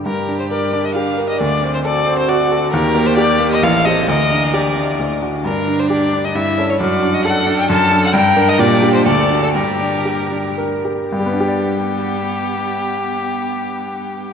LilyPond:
<<
  \new Staff \with { instrumentName = "Violin" } { \time 3/4 \key d \phrygian \tempo 4 = 132 bes'8. c''16 d''8. ees''16 f''8. ees''16 | d''8. c''16 d''8. c''16 d''4 | bes'8. c''16 d''8. ees''16 f''8 ees''8 | ees''4 d''4 r4 |
bes'8. c''16 d''8. ees''16 e''8. cis''16 | d''8. ees''16 fis''8. g''16 a''8. fis''16 | g''8. ees''16 d''8. c''16 d''8. a'16 | g'2 r4 |
g'2.~ | g'2. | }
  \new Staff \with { instrumentName = "Cello" } { \time 3/4 \key d \phrygian g'2 d'4~ | d'4 fis'2 | g'2 a'4 | bes'2~ bes'8 r8 |
d'2 e'4 | fis'4 a'4 a'4 | bes'4 g'4 a'4 | bes'2~ bes'8 r8 |
b2.~ | b2. | }
  \new Staff \with { instrumentName = "Grand piano" } { \time 3/4 \key d \phrygian g,8 d'8 bes'8 d'8 g'8 bes'8 | d,8 c'8 a'8 c'8 fis'8 a'8 | ees,8 bes8 g'8 bes8 a,,8 <c' g'>8 | d,8 d'8 g'8 d'8 d,8 <d' fis'>8 |
g,8 d'8 g'8 d'8 g,8 <cis' a'>8 | fis,8 d'8 a'8 d'8 fis,8 <d' a'>8 | g,8 <d' bes'>8 bes,8 <d' g'>8 d,8 <d' fis'>8 | g,8 d'8 g'8 d'8 bes'8 g'8 |
<g, g b d' g' d''>2.~ | <g, g b d' g' d''>2. | }
>>